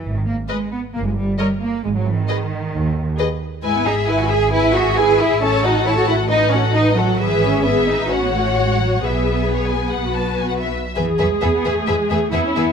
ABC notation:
X:1
M:4/4
L:1/16
Q:1/4=133
K:G#m
V:1 name="Violin section"
z4 d4 z4 d4 | z4 d4 z4 d4 | [K:E] g2 e2 g2 e2 g2 e2 g2 e2 | a2 f2 a2 f2 d2 f2 d2 f2 |
e4 e4 f8 | e4 c g2 f2 a2 g f e2 e | e2 e2 e2 e2 e2 e2 e2 e2 |]
V:2 name="Violin section"
z4 B4 z4 c4 | z4 B4 z4 B4 | [K:E] B2 G2 B2 G2 B2 G2 B2 G2 | c2 A2 c2 A2 B2 A2 B2 A2 |
B4 B4 c8 | B8 B6 z2 | [GB]2 [GB]2 [GB]2 [GB]2 [GB]2 [GB]2 [GB]2 [GB]2 |]
V:3 name="Viola section"
z4 B4 z4 A4 | z4 G4 z4 G4 | [K:E] E2 G2 E2 G2 E2 G2 E2 G2 | A2 F2 A2 F2 D2 F2 D2 F2 |
G4 G4 F8 | G8 F6 z2 | G12 E4 |]
V:4 name="Cello section"
E, D, A,2 G,2 B,2 A, G, =G,2 G,2 A,2 | G, F, E, D,8- D, z4 | [K:E] G, B, D2 E F G2 E2 F2 G2 E2 | C2 D2 E F E2 D2 C2 D2 F,2- |
F, E, C2 B,2 D2 C B, A,2 G,2 F,2 | B,12- B,2 z2 | E,2 F, G, B, B, A,2 G,2 A,2 B, C B,2 |]
V:5 name="Double bass section" clef=bass
G,,,4 z4 =G,,,4 z4 | G,,,4 z4 D,,4 z4 | [K:E] G,,,16 | A,,,16 |
G,,,8 A,,,8 | B,,,8 B,,,6 z2 | E,,2 E,,2 E,,2 E,,2 E,,2 E,,2 E,,2 E,,2 |]